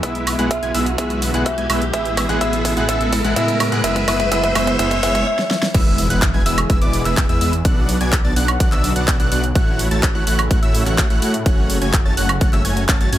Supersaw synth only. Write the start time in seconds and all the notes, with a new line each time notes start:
0.03 G#3 B3 E4 B4 E5
0.39 G#3 B3 E4 B4 F#5
0.63 G#3 B3 E4 B4 G#5
0.75 G#3 B3 E4 B4 E5
0.98 G#3 B3 E4 B4 E5
1.34 G#3 B3 E4 B4 F#5
1.58 G#3 B3 E4 B4 G#5
1.70 G#3 B3 E4 B4 E5
1.93 G#3 B3 E4 B4 E5
2.29 G#3 B3 E4 B4 F#5
2.41 G#3 B3 E4 B4 E5
2.77 G#3 B3 E4 B4 F#5
2.89 G#3 B3 E4 B4 E5
3.24 G#3 B3 E4 B4 F#5
3.36 G#3 B3 E4 B4 E5
3.72 G#3 B3 E4 B4 F#5
3.84 G#3 B3 E4 B4 E5
4.08 G#3 B3 E4 B4 E5
4.32 G#3 B3 E4 B4 E5
4.55 G#3 B3 E4 B4 E5
4.79 G#3 B3 E4 B4 E5
5.03 G#3 B3 E4 B4 E5
5.74 G#3 B3 E4 B4 E5
6.10 G#3 B3 E4 B4 F#5
6.34 G#3 B3 E4 B4 G#5
6.46 G#3 B3 E4 B4 E5
6.70 G#3 B3 E4 B4 E5
6.82 G#3 B3 E4 B4 D5
7.05 G#3 B3 E4 B4 E5
7.29 G#3 B3 E4 B4 E5
7.41 G#3 B3 E4 B4 E5
7.65 B3 D4 F#4 D5 F#5
8.01 B3 D4 F#4 D5 G#5
8.24 B3 D4 F#4 D5 A5
8.36 B3 D4 F#4 D5 F#5
8.60 B3 D4 F#4 D5 F#5
8.72 B3 D4 F#4 D5 E5
8.96 B3 D4 F#4 D5 F#5
9.20 B3 D4 F#4 D5 F#5
9.32 B3 D4 F#4 D5 F#5
9.55 A3 E4 F#4 C#5 F#5
9.91 A3 E4 F#4 C#5 A5
10.15 A3 E4 F#4 C#5 F#5
10.27 A3 E4 F#4 C#5 F#5
10.51 A3 E4 F#4 C#5 F#5
10.62 A3 E4 F#4 C#5 E5
10.86 A3 E4 F#4 C#5 F#5
11.10 A3 E4 F#4 C#5 F#5
11.22 A3 E4 F#4 C#5 F#5
11.46 A3 C#4 F#4 C#5 F#5
11.82 A3 C#4 F#4 C#5 G#5
12.05 A3 C#4 F#4 C#5 A5
12.17 A3 C#4 F#4 C#5 F#5
12.41 A3 C#4 F#4 C#5 F#5
12.53 A3 C#4 F#4 C#5 E5
12.65 A3 C#4 F#4 C#5 G#5
12.89 A3 C#4 F#4 C#5 A5
13.01 A3 C#4 F#4 C#5 A5
13.13 A3 C#4 F#4 C#5 G#5